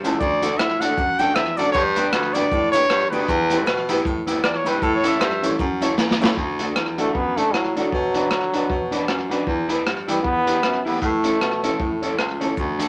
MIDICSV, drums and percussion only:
0, 0, Header, 1, 2, 480
1, 0, Start_track
1, 0, Key_signature, 2, "major"
1, 0, Tempo, 386598
1, 253, Time_signature, 4, 2, 24, 8
1, 15996, End_track
2, 0, Start_track
2, 0, Title_t, "Drums"
2, 55, Note_on_c, 9, 69, 79
2, 57, Note_on_c, 9, 42, 86
2, 179, Note_off_c, 9, 69, 0
2, 182, Note_off_c, 9, 42, 0
2, 252, Note_on_c, 9, 69, 61
2, 257, Note_on_c, 9, 36, 116
2, 376, Note_off_c, 9, 69, 0
2, 381, Note_off_c, 9, 36, 0
2, 528, Note_on_c, 9, 42, 93
2, 530, Note_on_c, 9, 69, 86
2, 652, Note_off_c, 9, 42, 0
2, 654, Note_off_c, 9, 69, 0
2, 731, Note_on_c, 9, 69, 68
2, 738, Note_on_c, 9, 37, 115
2, 856, Note_off_c, 9, 69, 0
2, 862, Note_off_c, 9, 37, 0
2, 1009, Note_on_c, 9, 69, 69
2, 1014, Note_on_c, 9, 42, 96
2, 1134, Note_off_c, 9, 69, 0
2, 1138, Note_off_c, 9, 42, 0
2, 1212, Note_on_c, 9, 36, 118
2, 1213, Note_on_c, 9, 69, 54
2, 1336, Note_off_c, 9, 36, 0
2, 1337, Note_off_c, 9, 69, 0
2, 1474, Note_on_c, 9, 69, 87
2, 1486, Note_on_c, 9, 42, 86
2, 1598, Note_off_c, 9, 69, 0
2, 1610, Note_off_c, 9, 42, 0
2, 1680, Note_on_c, 9, 69, 52
2, 1686, Note_on_c, 9, 37, 100
2, 1804, Note_off_c, 9, 69, 0
2, 1810, Note_off_c, 9, 37, 0
2, 1951, Note_on_c, 9, 69, 79
2, 1975, Note_on_c, 9, 42, 77
2, 2075, Note_off_c, 9, 69, 0
2, 2099, Note_off_c, 9, 42, 0
2, 2153, Note_on_c, 9, 69, 67
2, 2170, Note_on_c, 9, 36, 113
2, 2277, Note_off_c, 9, 69, 0
2, 2294, Note_off_c, 9, 36, 0
2, 2434, Note_on_c, 9, 42, 99
2, 2437, Note_on_c, 9, 69, 89
2, 2558, Note_off_c, 9, 42, 0
2, 2561, Note_off_c, 9, 69, 0
2, 2635, Note_on_c, 9, 69, 64
2, 2642, Note_on_c, 9, 37, 110
2, 2759, Note_off_c, 9, 69, 0
2, 2767, Note_off_c, 9, 37, 0
2, 2907, Note_on_c, 9, 69, 73
2, 2918, Note_on_c, 9, 42, 90
2, 3031, Note_off_c, 9, 69, 0
2, 3042, Note_off_c, 9, 42, 0
2, 3123, Note_on_c, 9, 36, 123
2, 3125, Note_on_c, 9, 69, 51
2, 3247, Note_off_c, 9, 36, 0
2, 3249, Note_off_c, 9, 69, 0
2, 3388, Note_on_c, 9, 69, 93
2, 3398, Note_on_c, 9, 42, 97
2, 3512, Note_off_c, 9, 69, 0
2, 3522, Note_off_c, 9, 42, 0
2, 3597, Note_on_c, 9, 69, 49
2, 3600, Note_on_c, 9, 37, 96
2, 3721, Note_off_c, 9, 69, 0
2, 3725, Note_off_c, 9, 37, 0
2, 3881, Note_on_c, 9, 69, 78
2, 3887, Note_on_c, 9, 46, 47
2, 4005, Note_off_c, 9, 69, 0
2, 4011, Note_off_c, 9, 46, 0
2, 4075, Note_on_c, 9, 44, 66
2, 4078, Note_on_c, 9, 36, 111
2, 4079, Note_on_c, 9, 69, 62
2, 4199, Note_off_c, 9, 44, 0
2, 4202, Note_off_c, 9, 36, 0
2, 4203, Note_off_c, 9, 69, 0
2, 4345, Note_on_c, 9, 42, 95
2, 4359, Note_on_c, 9, 69, 94
2, 4469, Note_off_c, 9, 42, 0
2, 4483, Note_off_c, 9, 69, 0
2, 4549, Note_on_c, 9, 69, 65
2, 4560, Note_on_c, 9, 37, 106
2, 4674, Note_off_c, 9, 69, 0
2, 4684, Note_off_c, 9, 37, 0
2, 4828, Note_on_c, 9, 42, 97
2, 4828, Note_on_c, 9, 69, 71
2, 4952, Note_off_c, 9, 42, 0
2, 4952, Note_off_c, 9, 69, 0
2, 5031, Note_on_c, 9, 36, 123
2, 5043, Note_on_c, 9, 69, 56
2, 5155, Note_off_c, 9, 36, 0
2, 5167, Note_off_c, 9, 69, 0
2, 5306, Note_on_c, 9, 42, 86
2, 5315, Note_on_c, 9, 69, 88
2, 5430, Note_off_c, 9, 42, 0
2, 5439, Note_off_c, 9, 69, 0
2, 5509, Note_on_c, 9, 37, 109
2, 5514, Note_on_c, 9, 69, 52
2, 5633, Note_off_c, 9, 37, 0
2, 5639, Note_off_c, 9, 69, 0
2, 5780, Note_on_c, 9, 69, 85
2, 5790, Note_on_c, 9, 42, 74
2, 5905, Note_off_c, 9, 69, 0
2, 5914, Note_off_c, 9, 42, 0
2, 5984, Note_on_c, 9, 36, 114
2, 5988, Note_on_c, 9, 69, 72
2, 6108, Note_off_c, 9, 36, 0
2, 6112, Note_off_c, 9, 69, 0
2, 6255, Note_on_c, 9, 42, 104
2, 6271, Note_on_c, 9, 69, 80
2, 6379, Note_off_c, 9, 42, 0
2, 6395, Note_off_c, 9, 69, 0
2, 6463, Note_on_c, 9, 69, 67
2, 6469, Note_on_c, 9, 37, 118
2, 6587, Note_off_c, 9, 69, 0
2, 6593, Note_off_c, 9, 37, 0
2, 6747, Note_on_c, 9, 42, 98
2, 6752, Note_on_c, 9, 69, 73
2, 6871, Note_off_c, 9, 42, 0
2, 6876, Note_off_c, 9, 69, 0
2, 6945, Note_on_c, 9, 36, 121
2, 6945, Note_on_c, 9, 69, 57
2, 7069, Note_off_c, 9, 36, 0
2, 7069, Note_off_c, 9, 69, 0
2, 7218, Note_on_c, 9, 69, 82
2, 7225, Note_on_c, 9, 42, 99
2, 7343, Note_off_c, 9, 69, 0
2, 7350, Note_off_c, 9, 42, 0
2, 7422, Note_on_c, 9, 38, 56
2, 7427, Note_on_c, 9, 69, 54
2, 7546, Note_off_c, 9, 38, 0
2, 7551, Note_off_c, 9, 69, 0
2, 7586, Note_on_c, 9, 38, 69
2, 7710, Note_off_c, 9, 38, 0
2, 7711, Note_on_c, 9, 69, 76
2, 7743, Note_on_c, 9, 38, 97
2, 7835, Note_off_c, 9, 69, 0
2, 7868, Note_off_c, 9, 38, 0
2, 7910, Note_on_c, 9, 36, 111
2, 8034, Note_off_c, 9, 36, 0
2, 8183, Note_on_c, 9, 42, 100
2, 8308, Note_off_c, 9, 42, 0
2, 8392, Note_on_c, 9, 37, 108
2, 8517, Note_off_c, 9, 37, 0
2, 8669, Note_on_c, 9, 42, 87
2, 8794, Note_off_c, 9, 42, 0
2, 8876, Note_on_c, 9, 36, 117
2, 9000, Note_off_c, 9, 36, 0
2, 9156, Note_on_c, 9, 42, 83
2, 9280, Note_off_c, 9, 42, 0
2, 9362, Note_on_c, 9, 37, 100
2, 9486, Note_off_c, 9, 37, 0
2, 9644, Note_on_c, 9, 42, 81
2, 9768, Note_off_c, 9, 42, 0
2, 9839, Note_on_c, 9, 36, 102
2, 9963, Note_off_c, 9, 36, 0
2, 10111, Note_on_c, 9, 42, 89
2, 10235, Note_off_c, 9, 42, 0
2, 10315, Note_on_c, 9, 37, 109
2, 10439, Note_off_c, 9, 37, 0
2, 10598, Note_on_c, 9, 42, 81
2, 10722, Note_off_c, 9, 42, 0
2, 10798, Note_on_c, 9, 36, 115
2, 10922, Note_off_c, 9, 36, 0
2, 11078, Note_on_c, 9, 42, 87
2, 11202, Note_off_c, 9, 42, 0
2, 11278, Note_on_c, 9, 37, 100
2, 11402, Note_off_c, 9, 37, 0
2, 11564, Note_on_c, 9, 42, 76
2, 11688, Note_off_c, 9, 42, 0
2, 11757, Note_on_c, 9, 36, 103
2, 11881, Note_off_c, 9, 36, 0
2, 12035, Note_on_c, 9, 42, 93
2, 12159, Note_off_c, 9, 42, 0
2, 12249, Note_on_c, 9, 37, 99
2, 12374, Note_off_c, 9, 37, 0
2, 12521, Note_on_c, 9, 42, 98
2, 12645, Note_off_c, 9, 42, 0
2, 12720, Note_on_c, 9, 36, 113
2, 12844, Note_off_c, 9, 36, 0
2, 13003, Note_on_c, 9, 42, 92
2, 13127, Note_off_c, 9, 42, 0
2, 13202, Note_on_c, 9, 37, 100
2, 13326, Note_off_c, 9, 37, 0
2, 13491, Note_on_c, 9, 46, 44
2, 13615, Note_off_c, 9, 46, 0
2, 13680, Note_on_c, 9, 44, 62
2, 13681, Note_on_c, 9, 36, 109
2, 13804, Note_off_c, 9, 44, 0
2, 13805, Note_off_c, 9, 36, 0
2, 13954, Note_on_c, 9, 42, 96
2, 14078, Note_off_c, 9, 42, 0
2, 14171, Note_on_c, 9, 37, 103
2, 14296, Note_off_c, 9, 37, 0
2, 14449, Note_on_c, 9, 42, 94
2, 14573, Note_off_c, 9, 42, 0
2, 14647, Note_on_c, 9, 36, 116
2, 14771, Note_off_c, 9, 36, 0
2, 14934, Note_on_c, 9, 42, 82
2, 15058, Note_off_c, 9, 42, 0
2, 15130, Note_on_c, 9, 37, 87
2, 15254, Note_off_c, 9, 37, 0
2, 15411, Note_on_c, 9, 42, 77
2, 15535, Note_off_c, 9, 42, 0
2, 15607, Note_on_c, 9, 69, 64
2, 15611, Note_on_c, 9, 36, 105
2, 15731, Note_off_c, 9, 69, 0
2, 15735, Note_off_c, 9, 36, 0
2, 15887, Note_on_c, 9, 42, 93
2, 15905, Note_on_c, 9, 69, 81
2, 15996, Note_off_c, 9, 42, 0
2, 15996, Note_off_c, 9, 69, 0
2, 15996, End_track
0, 0, End_of_file